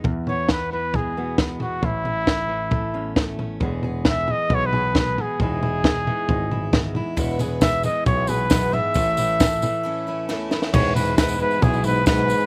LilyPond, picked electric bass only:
\new Staff \with { instrumentName = "Picked electric bass" } { \clef bass \time 4/4 \key e \major \tempo 4 = 135 e,1 | a,,1 | e,,2 b,,2 | e,,2 gis,,2 |
e,,2 b,,2 | a,,2 r2 | e,,2 b,,2 | }